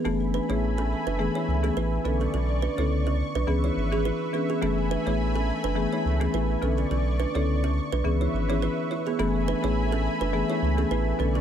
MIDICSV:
0, 0, Header, 1, 5, 480
1, 0, Start_track
1, 0, Key_signature, 3, "minor"
1, 0, Tempo, 571429
1, 41, Time_signature, 4, 2, 24, 8
1, 9583, End_track
2, 0, Start_track
2, 0, Title_t, "Analog synth pad"
2, 0, Program_c, 0, 89
2, 42, Note_on_c, 0, 57, 88
2, 42, Note_on_c, 0, 76, 78
2, 42, Note_on_c, 0, 80, 82
2, 42, Note_on_c, 0, 83, 97
2, 1705, Note_off_c, 0, 76, 0
2, 1705, Note_off_c, 0, 80, 0
2, 1705, Note_off_c, 0, 83, 0
2, 1721, Note_on_c, 0, 85, 97
2, 1722, Note_on_c, 0, 74, 81
2, 2893, Note_off_c, 0, 57, 0
2, 2910, Note_off_c, 0, 74, 0
2, 2920, Note_on_c, 0, 71, 79
2, 2921, Note_on_c, 0, 76, 73
2, 3859, Note_off_c, 0, 85, 0
2, 3871, Note_off_c, 0, 71, 0
2, 3881, Note_on_c, 0, 57, 87
2, 3881, Note_on_c, 0, 80, 78
2, 3882, Note_on_c, 0, 83, 96
2, 5534, Note_off_c, 0, 76, 0
2, 5544, Note_off_c, 0, 80, 0
2, 5544, Note_off_c, 0, 83, 0
2, 5562, Note_on_c, 0, 74, 80
2, 5562, Note_on_c, 0, 85, 95
2, 6732, Note_off_c, 0, 57, 0
2, 6750, Note_off_c, 0, 74, 0
2, 6761, Note_on_c, 0, 71, 75
2, 6761, Note_on_c, 0, 76, 74
2, 7700, Note_off_c, 0, 85, 0
2, 7711, Note_off_c, 0, 76, 0
2, 7712, Note_off_c, 0, 71, 0
2, 7721, Note_on_c, 0, 57, 86
2, 7721, Note_on_c, 0, 76, 81
2, 7721, Note_on_c, 0, 80, 83
2, 7721, Note_on_c, 0, 83, 100
2, 9384, Note_off_c, 0, 76, 0
2, 9384, Note_off_c, 0, 80, 0
2, 9384, Note_off_c, 0, 83, 0
2, 9401, Note_on_c, 0, 74, 81
2, 9402, Note_on_c, 0, 85, 101
2, 9583, Note_off_c, 0, 57, 0
2, 9583, Note_off_c, 0, 74, 0
2, 9583, Note_off_c, 0, 85, 0
2, 9583, End_track
3, 0, Start_track
3, 0, Title_t, "Kalimba"
3, 0, Program_c, 1, 108
3, 45, Note_on_c, 1, 69, 80
3, 52, Note_on_c, 1, 61, 60
3, 110, Note_off_c, 1, 69, 0
3, 115, Note_off_c, 1, 61, 0
3, 286, Note_on_c, 1, 71, 81
3, 293, Note_on_c, 1, 62, 61
3, 351, Note_off_c, 1, 71, 0
3, 356, Note_off_c, 1, 62, 0
3, 417, Note_on_c, 1, 73, 76
3, 424, Note_on_c, 1, 64, 60
3, 470, Note_off_c, 1, 73, 0
3, 475, Note_off_c, 1, 64, 0
3, 658, Note_on_c, 1, 69, 78
3, 664, Note_on_c, 1, 61, 62
3, 710, Note_off_c, 1, 69, 0
3, 715, Note_off_c, 1, 61, 0
3, 897, Note_on_c, 1, 71, 81
3, 904, Note_on_c, 1, 62, 68
3, 950, Note_off_c, 1, 71, 0
3, 955, Note_off_c, 1, 62, 0
3, 1137, Note_on_c, 1, 73, 70
3, 1144, Note_on_c, 1, 64, 51
3, 1190, Note_off_c, 1, 73, 0
3, 1195, Note_off_c, 1, 64, 0
3, 1376, Note_on_c, 1, 69, 78
3, 1383, Note_on_c, 1, 61, 61
3, 1429, Note_off_c, 1, 69, 0
3, 1434, Note_off_c, 1, 61, 0
3, 1485, Note_on_c, 1, 71, 83
3, 1492, Note_on_c, 1, 64, 63
3, 1550, Note_off_c, 1, 71, 0
3, 1555, Note_off_c, 1, 64, 0
3, 1725, Note_on_c, 1, 71, 67
3, 1732, Note_on_c, 1, 62, 55
3, 1790, Note_off_c, 1, 71, 0
3, 1795, Note_off_c, 1, 62, 0
3, 1857, Note_on_c, 1, 69, 72
3, 1863, Note_on_c, 1, 61, 58
3, 1910, Note_off_c, 1, 69, 0
3, 1914, Note_off_c, 1, 61, 0
3, 1964, Note_on_c, 1, 69, 81
3, 1971, Note_on_c, 1, 61, 60
3, 2029, Note_off_c, 1, 69, 0
3, 2034, Note_off_c, 1, 61, 0
3, 2205, Note_on_c, 1, 71, 83
3, 2211, Note_on_c, 1, 62, 61
3, 2270, Note_off_c, 1, 71, 0
3, 2275, Note_off_c, 1, 62, 0
3, 2336, Note_on_c, 1, 73, 76
3, 2343, Note_on_c, 1, 64, 60
3, 2390, Note_off_c, 1, 73, 0
3, 2395, Note_off_c, 1, 64, 0
3, 2577, Note_on_c, 1, 69, 78
3, 2583, Note_on_c, 1, 61, 61
3, 2630, Note_off_c, 1, 69, 0
3, 2635, Note_off_c, 1, 61, 0
3, 2817, Note_on_c, 1, 71, 84
3, 2824, Note_on_c, 1, 62, 66
3, 2870, Note_off_c, 1, 71, 0
3, 2875, Note_off_c, 1, 62, 0
3, 3057, Note_on_c, 1, 73, 71
3, 3064, Note_on_c, 1, 64, 55
3, 3110, Note_off_c, 1, 73, 0
3, 3115, Note_off_c, 1, 64, 0
3, 3297, Note_on_c, 1, 68, 78
3, 3304, Note_on_c, 1, 59, 60
3, 3350, Note_off_c, 1, 68, 0
3, 3355, Note_off_c, 1, 59, 0
3, 3405, Note_on_c, 1, 71, 84
3, 3412, Note_on_c, 1, 64, 65
3, 3470, Note_off_c, 1, 71, 0
3, 3475, Note_off_c, 1, 64, 0
3, 3645, Note_on_c, 1, 71, 66
3, 3652, Note_on_c, 1, 62, 55
3, 3710, Note_off_c, 1, 71, 0
3, 3715, Note_off_c, 1, 62, 0
3, 3778, Note_on_c, 1, 68, 73
3, 3785, Note_on_c, 1, 59, 56
3, 3831, Note_off_c, 1, 68, 0
3, 3836, Note_off_c, 1, 59, 0
3, 3886, Note_on_c, 1, 69, 81
3, 3893, Note_on_c, 1, 61, 64
3, 3951, Note_off_c, 1, 69, 0
3, 3956, Note_off_c, 1, 61, 0
3, 4126, Note_on_c, 1, 71, 82
3, 4133, Note_on_c, 1, 62, 65
3, 4191, Note_off_c, 1, 71, 0
3, 4196, Note_off_c, 1, 62, 0
3, 4257, Note_on_c, 1, 73, 73
3, 4264, Note_on_c, 1, 64, 61
3, 4310, Note_off_c, 1, 73, 0
3, 4315, Note_off_c, 1, 64, 0
3, 4499, Note_on_c, 1, 69, 79
3, 4505, Note_on_c, 1, 61, 61
3, 4551, Note_off_c, 1, 69, 0
3, 4556, Note_off_c, 1, 61, 0
3, 4738, Note_on_c, 1, 71, 85
3, 4745, Note_on_c, 1, 62, 68
3, 4791, Note_off_c, 1, 71, 0
3, 4796, Note_off_c, 1, 62, 0
3, 4978, Note_on_c, 1, 73, 70
3, 4985, Note_on_c, 1, 64, 52
3, 5030, Note_off_c, 1, 73, 0
3, 5036, Note_off_c, 1, 64, 0
3, 5218, Note_on_c, 1, 69, 81
3, 5225, Note_on_c, 1, 61, 63
3, 5271, Note_off_c, 1, 69, 0
3, 5276, Note_off_c, 1, 61, 0
3, 5325, Note_on_c, 1, 71, 86
3, 5332, Note_on_c, 1, 64, 69
3, 5390, Note_off_c, 1, 71, 0
3, 5395, Note_off_c, 1, 64, 0
3, 5566, Note_on_c, 1, 71, 69
3, 5572, Note_on_c, 1, 62, 55
3, 5630, Note_off_c, 1, 71, 0
3, 5635, Note_off_c, 1, 62, 0
3, 5697, Note_on_c, 1, 69, 70
3, 5704, Note_on_c, 1, 61, 59
3, 5750, Note_off_c, 1, 69, 0
3, 5755, Note_off_c, 1, 61, 0
3, 5805, Note_on_c, 1, 69, 80
3, 5812, Note_on_c, 1, 61, 64
3, 5870, Note_off_c, 1, 69, 0
3, 5875, Note_off_c, 1, 61, 0
3, 6044, Note_on_c, 1, 71, 82
3, 6051, Note_on_c, 1, 62, 67
3, 6110, Note_off_c, 1, 71, 0
3, 6115, Note_off_c, 1, 62, 0
3, 6176, Note_on_c, 1, 73, 78
3, 6183, Note_on_c, 1, 64, 61
3, 6230, Note_off_c, 1, 73, 0
3, 6234, Note_off_c, 1, 64, 0
3, 6417, Note_on_c, 1, 69, 80
3, 6423, Note_on_c, 1, 61, 64
3, 6470, Note_off_c, 1, 69, 0
3, 6475, Note_off_c, 1, 61, 0
3, 6657, Note_on_c, 1, 71, 89
3, 6663, Note_on_c, 1, 62, 66
3, 6710, Note_off_c, 1, 71, 0
3, 6715, Note_off_c, 1, 62, 0
3, 6897, Note_on_c, 1, 73, 69
3, 6904, Note_on_c, 1, 64, 54
3, 6950, Note_off_c, 1, 73, 0
3, 6955, Note_off_c, 1, 64, 0
3, 7137, Note_on_c, 1, 73, 79
3, 7143, Note_on_c, 1, 64, 60
3, 7190, Note_off_c, 1, 73, 0
3, 7195, Note_off_c, 1, 64, 0
3, 7244, Note_on_c, 1, 71, 86
3, 7251, Note_on_c, 1, 64, 68
3, 7310, Note_off_c, 1, 71, 0
3, 7315, Note_off_c, 1, 64, 0
3, 7484, Note_on_c, 1, 73, 69
3, 7492, Note_on_c, 1, 64, 55
3, 7550, Note_off_c, 1, 73, 0
3, 7555, Note_off_c, 1, 64, 0
3, 7616, Note_on_c, 1, 68, 75
3, 7623, Note_on_c, 1, 59, 58
3, 7669, Note_off_c, 1, 68, 0
3, 7674, Note_off_c, 1, 59, 0
3, 7724, Note_on_c, 1, 69, 84
3, 7731, Note_on_c, 1, 61, 66
3, 7789, Note_off_c, 1, 69, 0
3, 7794, Note_off_c, 1, 61, 0
3, 7964, Note_on_c, 1, 71, 84
3, 7971, Note_on_c, 1, 62, 66
3, 8030, Note_off_c, 1, 71, 0
3, 8035, Note_off_c, 1, 62, 0
3, 8097, Note_on_c, 1, 73, 81
3, 8103, Note_on_c, 1, 64, 58
3, 8150, Note_off_c, 1, 73, 0
3, 8154, Note_off_c, 1, 64, 0
3, 8336, Note_on_c, 1, 69, 80
3, 8343, Note_on_c, 1, 61, 62
3, 8389, Note_off_c, 1, 69, 0
3, 8394, Note_off_c, 1, 61, 0
3, 8577, Note_on_c, 1, 71, 86
3, 8583, Note_on_c, 1, 62, 69
3, 8630, Note_off_c, 1, 71, 0
3, 8635, Note_off_c, 1, 62, 0
3, 8817, Note_on_c, 1, 73, 68
3, 8824, Note_on_c, 1, 64, 54
3, 8870, Note_off_c, 1, 73, 0
3, 8875, Note_off_c, 1, 64, 0
3, 9057, Note_on_c, 1, 69, 77
3, 9064, Note_on_c, 1, 61, 62
3, 9110, Note_off_c, 1, 69, 0
3, 9115, Note_off_c, 1, 61, 0
3, 9165, Note_on_c, 1, 71, 87
3, 9172, Note_on_c, 1, 64, 68
3, 9230, Note_off_c, 1, 71, 0
3, 9235, Note_off_c, 1, 64, 0
3, 9406, Note_on_c, 1, 71, 70
3, 9412, Note_on_c, 1, 62, 55
3, 9470, Note_off_c, 1, 71, 0
3, 9475, Note_off_c, 1, 62, 0
3, 9537, Note_on_c, 1, 69, 74
3, 9544, Note_on_c, 1, 61, 56
3, 9583, Note_off_c, 1, 61, 0
3, 9583, Note_off_c, 1, 69, 0
3, 9583, End_track
4, 0, Start_track
4, 0, Title_t, "Marimba"
4, 0, Program_c, 2, 12
4, 39, Note_on_c, 2, 52, 88
4, 41, Note_on_c, 2, 57, 86
4, 43, Note_on_c, 2, 59, 80
4, 44, Note_on_c, 2, 68, 100
4, 380, Note_off_c, 2, 52, 0
4, 381, Note_off_c, 2, 57, 0
4, 382, Note_off_c, 2, 59, 0
4, 383, Note_off_c, 2, 68, 0
4, 411, Note_on_c, 2, 52, 71
4, 413, Note_on_c, 2, 57, 67
4, 415, Note_on_c, 2, 59, 67
4, 416, Note_on_c, 2, 68, 85
4, 586, Note_off_c, 2, 52, 0
4, 587, Note_off_c, 2, 57, 0
4, 588, Note_off_c, 2, 59, 0
4, 588, Note_off_c, 2, 68, 0
4, 998, Note_on_c, 2, 52, 93
4, 1000, Note_on_c, 2, 57, 82
4, 1002, Note_on_c, 2, 59, 84
4, 1003, Note_on_c, 2, 68, 101
4, 1340, Note_off_c, 2, 52, 0
4, 1340, Note_off_c, 2, 57, 0
4, 1342, Note_off_c, 2, 59, 0
4, 1342, Note_off_c, 2, 68, 0
4, 1369, Note_on_c, 2, 52, 73
4, 1371, Note_on_c, 2, 57, 65
4, 1373, Note_on_c, 2, 59, 69
4, 1375, Note_on_c, 2, 68, 83
4, 1693, Note_off_c, 2, 52, 0
4, 1694, Note_off_c, 2, 57, 0
4, 1695, Note_off_c, 2, 59, 0
4, 1696, Note_off_c, 2, 68, 0
4, 1718, Note_on_c, 2, 50, 74
4, 1719, Note_on_c, 2, 59, 67
4, 1721, Note_on_c, 2, 61, 67
4, 1722, Note_on_c, 2, 69, 84
4, 1942, Note_off_c, 2, 50, 0
4, 1943, Note_off_c, 2, 59, 0
4, 1943, Note_off_c, 2, 61, 0
4, 1944, Note_off_c, 2, 69, 0
4, 2330, Note_on_c, 2, 50, 73
4, 2332, Note_on_c, 2, 59, 67
4, 2333, Note_on_c, 2, 61, 65
4, 2335, Note_on_c, 2, 69, 85
4, 2505, Note_off_c, 2, 50, 0
4, 2506, Note_off_c, 2, 59, 0
4, 2507, Note_off_c, 2, 61, 0
4, 2508, Note_off_c, 2, 69, 0
4, 2917, Note_on_c, 2, 52, 89
4, 2918, Note_on_c, 2, 59, 86
4, 2921, Note_on_c, 2, 61, 80
4, 2922, Note_on_c, 2, 68, 104
4, 3259, Note_off_c, 2, 52, 0
4, 3260, Note_off_c, 2, 59, 0
4, 3261, Note_off_c, 2, 61, 0
4, 3262, Note_off_c, 2, 68, 0
4, 3290, Note_on_c, 2, 52, 73
4, 3292, Note_on_c, 2, 59, 68
4, 3294, Note_on_c, 2, 61, 67
4, 3295, Note_on_c, 2, 68, 83
4, 3614, Note_off_c, 2, 52, 0
4, 3615, Note_off_c, 2, 59, 0
4, 3615, Note_off_c, 2, 61, 0
4, 3616, Note_off_c, 2, 68, 0
4, 3638, Note_on_c, 2, 52, 75
4, 3640, Note_on_c, 2, 59, 69
4, 3641, Note_on_c, 2, 61, 67
4, 3643, Note_on_c, 2, 68, 82
4, 3862, Note_off_c, 2, 52, 0
4, 3863, Note_off_c, 2, 59, 0
4, 3864, Note_off_c, 2, 61, 0
4, 3865, Note_off_c, 2, 68, 0
4, 3878, Note_on_c, 2, 52, 94
4, 3879, Note_on_c, 2, 57, 85
4, 3881, Note_on_c, 2, 59, 83
4, 3883, Note_on_c, 2, 68, 102
4, 4220, Note_off_c, 2, 52, 0
4, 4220, Note_off_c, 2, 57, 0
4, 4221, Note_off_c, 2, 59, 0
4, 4222, Note_off_c, 2, 68, 0
4, 4250, Note_on_c, 2, 52, 79
4, 4251, Note_on_c, 2, 57, 70
4, 4253, Note_on_c, 2, 59, 70
4, 4255, Note_on_c, 2, 68, 88
4, 4425, Note_off_c, 2, 52, 0
4, 4426, Note_off_c, 2, 57, 0
4, 4427, Note_off_c, 2, 59, 0
4, 4428, Note_off_c, 2, 68, 0
4, 4837, Note_on_c, 2, 52, 90
4, 4839, Note_on_c, 2, 57, 84
4, 4840, Note_on_c, 2, 59, 85
4, 4842, Note_on_c, 2, 68, 96
4, 5179, Note_off_c, 2, 52, 0
4, 5180, Note_off_c, 2, 57, 0
4, 5181, Note_off_c, 2, 59, 0
4, 5182, Note_off_c, 2, 68, 0
4, 5209, Note_on_c, 2, 52, 75
4, 5211, Note_on_c, 2, 57, 70
4, 5213, Note_on_c, 2, 59, 68
4, 5215, Note_on_c, 2, 68, 82
4, 5533, Note_off_c, 2, 52, 0
4, 5534, Note_off_c, 2, 57, 0
4, 5535, Note_off_c, 2, 59, 0
4, 5536, Note_off_c, 2, 68, 0
4, 5557, Note_on_c, 2, 50, 73
4, 5559, Note_on_c, 2, 59, 73
4, 5561, Note_on_c, 2, 61, 67
4, 5563, Note_on_c, 2, 69, 81
4, 5782, Note_off_c, 2, 50, 0
4, 5783, Note_off_c, 2, 59, 0
4, 5783, Note_off_c, 2, 61, 0
4, 5785, Note_off_c, 2, 69, 0
4, 6170, Note_on_c, 2, 50, 75
4, 6172, Note_on_c, 2, 59, 69
4, 6173, Note_on_c, 2, 61, 72
4, 6175, Note_on_c, 2, 69, 82
4, 6345, Note_off_c, 2, 50, 0
4, 6346, Note_off_c, 2, 59, 0
4, 6347, Note_off_c, 2, 61, 0
4, 6347, Note_off_c, 2, 69, 0
4, 6756, Note_on_c, 2, 52, 94
4, 6758, Note_on_c, 2, 59, 86
4, 6760, Note_on_c, 2, 61, 85
4, 6761, Note_on_c, 2, 68, 101
4, 7099, Note_off_c, 2, 52, 0
4, 7100, Note_off_c, 2, 59, 0
4, 7101, Note_off_c, 2, 61, 0
4, 7101, Note_off_c, 2, 68, 0
4, 7130, Note_on_c, 2, 52, 76
4, 7132, Note_on_c, 2, 59, 67
4, 7133, Note_on_c, 2, 61, 68
4, 7135, Note_on_c, 2, 68, 82
4, 7305, Note_off_c, 2, 52, 0
4, 7306, Note_off_c, 2, 59, 0
4, 7307, Note_off_c, 2, 61, 0
4, 7308, Note_off_c, 2, 68, 0
4, 7718, Note_on_c, 2, 52, 92
4, 7720, Note_on_c, 2, 57, 84
4, 7721, Note_on_c, 2, 59, 88
4, 7723, Note_on_c, 2, 68, 101
4, 8060, Note_off_c, 2, 52, 0
4, 8060, Note_off_c, 2, 57, 0
4, 8061, Note_off_c, 2, 59, 0
4, 8062, Note_off_c, 2, 68, 0
4, 8089, Note_on_c, 2, 52, 75
4, 8091, Note_on_c, 2, 57, 72
4, 8093, Note_on_c, 2, 59, 68
4, 8094, Note_on_c, 2, 68, 84
4, 8265, Note_off_c, 2, 52, 0
4, 8265, Note_off_c, 2, 57, 0
4, 8267, Note_off_c, 2, 59, 0
4, 8267, Note_off_c, 2, 68, 0
4, 8678, Note_on_c, 2, 52, 92
4, 8680, Note_on_c, 2, 57, 83
4, 8681, Note_on_c, 2, 59, 85
4, 8683, Note_on_c, 2, 68, 101
4, 9020, Note_off_c, 2, 52, 0
4, 9021, Note_off_c, 2, 57, 0
4, 9021, Note_off_c, 2, 59, 0
4, 9022, Note_off_c, 2, 68, 0
4, 9050, Note_on_c, 2, 52, 73
4, 9051, Note_on_c, 2, 57, 69
4, 9053, Note_on_c, 2, 59, 70
4, 9055, Note_on_c, 2, 68, 84
4, 9373, Note_off_c, 2, 52, 0
4, 9374, Note_off_c, 2, 57, 0
4, 9375, Note_off_c, 2, 59, 0
4, 9376, Note_off_c, 2, 68, 0
4, 9397, Note_on_c, 2, 50, 78
4, 9399, Note_on_c, 2, 59, 67
4, 9401, Note_on_c, 2, 61, 72
4, 9402, Note_on_c, 2, 69, 84
4, 9583, Note_off_c, 2, 50, 0
4, 9583, Note_off_c, 2, 59, 0
4, 9583, Note_off_c, 2, 61, 0
4, 9583, Note_off_c, 2, 69, 0
4, 9583, End_track
5, 0, Start_track
5, 0, Title_t, "Sub bass"
5, 0, Program_c, 3, 38
5, 42, Note_on_c, 3, 30, 109
5, 332, Note_off_c, 3, 30, 0
5, 414, Note_on_c, 3, 33, 79
5, 789, Note_off_c, 3, 33, 0
5, 893, Note_on_c, 3, 30, 91
5, 1081, Note_off_c, 3, 30, 0
5, 1241, Note_on_c, 3, 37, 96
5, 1429, Note_off_c, 3, 37, 0
5, 1481, Note_on_c, 3, 33, 93
5, 1668, Note_off_c, 3, 33, 0
5, 1720, Note_on_c, 3, 35, 104
5, 1908, Note_off_c, 3, 35, 0
5, 1961, Note_on_c, 3, 35, 108
5, 2252, Note_off_c, 3, 35, 0
5, 2332, Note_on_c, 3, 37, 85
5, 2708, Note_off_c, 3, 37, 0
5, 2813, Note_on_c, 3, 35, 88
5, 2897, Note_off_c, 3, 35, 0
5, 2921, Note_on_c, 3, 37, 109
5, 3109, Note_off_c, 3, 37, 0
5, 3161, Note_on_c, 3, 32, 92
5, 3452, Note_off_c, 3, 32, 0
5, 3881, Note_on_c, 3, 30, 111
5, 4172, Note_off_c, 3, 30, 0
5, 4254, Note_on_c, 3, 33, 81
5, 4629, Note_off_c, 3, 33, 0
5, 4735, Note_on_c, 3, 30, 93
5, 4922, Note_off_c, 3, 30, 0
5, 5083, Note_on_c, 3, 37, 97
5, 5270, Note_off_c, 3, 37, 0
5, 5322, Note_on_c, 3, 33, 91
5, 5509, Note_off_c, 3, 33, 0
5, 5561, Note_on_c, 3, 35, 107
5, 5749, Note_off_c, 3, 35, 0
5, 5801, Note_on_c, 3, 35, 112
5, 6092, Note_off_c, 3, 35, 0
5, 6173, Note_on_c, 3, 37, 84
5, 6549, Note_off_c, 3, 37, 0
5, 6653, Note_on_c, 3, 35, 88
5, 6737, Note_off_c, 3, 35, 0
5, 6760, Note_on_c, 3, 37, 104
5, 6948, Note_off_c, 3, 37, 0
5, 7001, Note_on_c, 3, 32, 94
5, 7292, Note_off_c, 3, 32, 0
5, 7721, Note_on_c, 3, 30, 110
5, 8012, Note_off_c, 3, 30, 0
5, 8093, Note_on_c, 3, 33, 82
5, 8468, Note_off_c, 3, 33, 0
5, 8573, Note_on_c, 3, 30, 92
5, 8761, Note_off_c, 3, 30, 0
5, 8920, Note_on_c, 3, 37, 98
5, 9108, Note_off_c, 3, 37, 0
5, 9161, Note_on_c, 3, 33, 92
5, 9348, Note_off_c, 3, 33, 0
5, 9401, Note_on_c, 3, 35, 106
5, 9583, Note_off_c, 3, 35, 0
5, 9583, End_track
0, 0, End_of_file